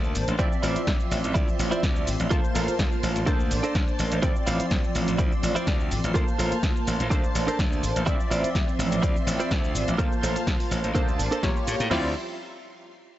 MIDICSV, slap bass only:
0, 0, Header, 1, 3, 480
1, 0, Start_track
1, 0, Key_signature, -1, "minor"
1, 0, Tempo, 480000
1, 391, Time_signature, 4, 2, 24, 8
1, 13185, End_track
2, 0, Start_track
2, 0, Title_t, "Slap bass"
2, 0, Program_c, 0, 36
2, 0, Note_on_c, 0, 38, 96
2, 148, Note_on_c, 0, 33, 91
2, 164, Note_off_c, 0, 38, 0
2, 235, Note_off_c, 0, 33, 0
2, 277, Note_on_c, 0, 33, 83
2, 353, Note_off_c, 0, 33, 0
2, 392, Note_on_c, 0, 38, 98
2, 477, Note_off_c, 0, 38, 0
2, 632, Note_on_c, 0, 33, 107
2, 754, Note_off_c, 0, 33, 0
2, 873, Note_on_c, 0, 38, 87
2, 957, Note_off_c, 0, 38, 0
2, 1113, Note_on_c, 0, 33, 91
2, 1197, Note_off_c, 0, 33, 0
2, 1242, Note_on_c, 0, 33, 100
2, 1315, Note_off_c, 0, 33, 0
2, 1352, Note_on_c, 0, 38, 97
2, 1476, Note_off_c, 0, 38, 0
2, 1593, Note_on_c, 0, 33, 101
2, 1713, Note_off_c, 0, 33, 0
2, 1832, Note_on_c, 0, 38, 97
2, 2069, Note_on_c, 0, 33, 90
2, 2084, Note_off_c, 0, 38, 0
2, 2155, Note_off_c, 0, 33, 0
2, 2197, Note_on_c, 0, 33, 82
2, 2273, Note_off_c, 0, 33, 0
2, 2552, Note_on_c, 0, 33, 104
2, 2673, Note_off_c, 0, 33, 0
2, 2791, Note_on_c, 0, 38, 92
2, 2876, Note_off_c, 0, 38, 0
2, 3031, Note_on_c, 0, 33, 87
2, 3116, Note_off_c, 0, 33, 0
2, 3158, Note_on_c, 0, 33, 98
2, 3233, Note_off_c, 0, 33, 0
2, 3512, Note_on_c, 0, 33, 84
2, 3596, Note_off_c, 0, 33, 0
2, 3752, Note_on_c, 0, 38, 106
2, 3836, Note_off_c, 0, 38, 0
2, 3992, Note_on_c, 0, 33, 80
2, 4077, Note_off_c, 0, 33, 0
2, 4118, Note_on_c, 0, 33, 83
2, 4193, Note_off_c, 0, 33, 0
2, 4231, Note_on_c, 0, 38, 100
2, 4316, Note_off_c, 0, 38, 0
2, 4472, Note_on_c, 0, 33, 106
2, 4594, Note_off_c, 0, 33, 0
2, 4711, Note_on_c, 0, 38, 90
2, 4796, Note_off_c, 0, 38, 0
2, 4952, Note_on_c, 0, 33, 89
2, 5037, Note_off_c, 0, 33, 0
2, 5081, Note_on_c, 0, 33, 96
2, 5155, Note_off_c, 0, 33, 0
2, 5190, Note_on_c, 0, 38, 95
2, 5314, Note_off_c, 0, 38, 0
2, 5430, Note_on_c, 0, 33, 103
2, 5553, Note_off_c, 0, 33, 0
2, 5671, Note_on_c, 0, 38, 97
2, 5910, Note_on_c, 0, 33, 91
2, 5925, Note_off_c, 0, 38, 0
2, 5996, Note_off_c, 0, 33, 0
2, 6039, Note_on_c, 0, 33, 81
2, 6114, Note_off_c, 0, 33, 0
2, 6151, Note_on_c, 0, 38, 102
2, 6236, Note_off_c, 0, 38, 0
2, 6391, Note_on_c, 0, 33, 103
2, 6514, Note_off_c, 0, 33, 0
2, 6630, Note_on_c, 0, 38, 88
2, 6715, Note_off_c, 0, 38, 0
2, 6874, Note_on_c, 0, 33, 88
2, 6958, Note_off_c, 0, 33, 0
2, 6999, Note_on_c, 0, 33, 100
2, 7074, Note_off_c, 0, 33, 0
2, 7111, Note_on_c, 0, 38, 97
2, 7233, Note_off_c, 0, 38, 0
2, 7351, Note_on_c, 0, 33, 104
2, 7474, Note_off_c, 0, 33, 0
2, 7590, Note_on_c, 0, 38, 97
2, 7831, Note_on_c, 0, 33, 93
2, 7846, Note_off_c, 0, 38, 0
2, 7916, Note_off_c, 0, 33, 0
2, 7960, Note_on_c, 0, 33, 84
2, 8034, Note_off_c, 0, 33, 0
2, 8071, Note_on_c, 0, 38, 104
2, 8156, Note_off_c, 0, 38, 0
2, 8310, Note_on_c, 0, 33, 104
2, 8432, Note_off_c, 0, 33, 0
2, 8550, Note_on_c, 0, 38, 92
2, 8636, Note_off_c, 0, 38, 0
2, 8789, Note_on_c, 0, 33, 92
2, 8875, Note_off_c, 0, 33, 0
2, 8916, Note_on_c, 0, 33, 101
2, 8992, Note_off_c, 0, 33, 0
2, 9268, Note_on_c, 0, 33, 104
2, 9388, Note_off_c, 0, 33, 0
2, 9512, Note_on_c, 0, 38, 99
2, 9747, Note_on_c, 0, 33, 92
2, 9762, Note_off_c, 0, 38, 0
2, 9834, Note_off_c, 0, 33, 0
2, 9879, Note_on_c, 0, 33, 81
2, 9954, Note_off_c, 0, 33, 0
2, 10232, Note_on_c, 0, 33, 104
2, 10353, Note_off_c, 0, 33, 0
2, 10471, Note_on_c, 0, 38, 91
2, 10556, Note_off_c, 0, 38, 0
2, 10712, Note_on_c, 0, 33, 93
2, 10796, Note_off_c, 0, 33, 0
2, 10841, Note_on_c, 0, 33, 100
2, 10915, Note_off_c, 0, 33, 0
2, 10952, Note_on_c, 0, 38, 93
2, 11191, Note_on_c, 0, 33, 104
2, 11206, Note_off_c, 0, 38, 0
2, 11276, Note_off_c, 0, 33, 0
2, 11433, Note_on_c, 0, 33, 98
2, 11517, Note_off_c, 0, 33, 0
2, 11674, Note_on_c, 0, 45, 83
2, 11757, Note_off_c, 0, 45, 0
2, 11800, Note_on_c, 0, 45, 100
2, 11874, Note_off_c, 0, 45, 0
2, 11912, Note_on_c, 0, 38, 98
2, 12135, Note_off_c, 0, 38, 0
2, 13185, End_track
3, 0, Start_track
3, 0, Title_t, "Muted slap bass strokes"
3, 519, Note_on_c, 9, 29, 44
3, 619, Note_off_c, 9, 29, 0
3, 760, Note_on_c, 9, 29, 42
3, 860, Note_off_c, 9, 29, 0
3, 1482, Note_on_c, 9, 29, 45
3, 1582, Note_off_c, 9, 29, 0
3, 1719, Note_on_c, 9, 29, 43
3, 1819, Note_off_c, 9, 29, 0
3, 2680, Note_on_c, 9, 29, 43
3, 2780, Note_off_c, 9, 29, 0
3, 4600, Note_on_c, 9, 29, 43
3, 4700, Note_off_c, 9, 29, 0
3, 5320, Note_on_c, 9, 29, 43
3, 5420, Note_off_c, 9, 29, 0
3, 5559, Note_on_c, 9, 29, 43
3, 5659, Note_off_c, 9, 29, 0
3, 6520, Note_on_c, 9, 29, 44
3, 6620, Note_off_c, 9, 29, 0
3, 7239, Note_on_c, 9, 29, 46
3, 7339, Note_off_c, 9, 29, 0
3, 7480, Note_on_c, 9, 29, 45
3, 7580, Note_off_c, 9, 29, 0
3, 8438, Note_on_c, 9, 29, 46
3, 8538, Note_off_c, 9, 29, 0
3, 9158, Note_on_c, 9, 29, 44
3, 9258, Note_off_c, 9, 29, 0
3, 9394, Note_on_c, 9, 29, 46
3, 9494, Note_off_c, 9, 29, 0
3, 10359, Note_on_c, 9, 29, 44
3, 10459, Note_off_c, 9, 29, 0
3, 13185, End_track
0, 0, End_of_file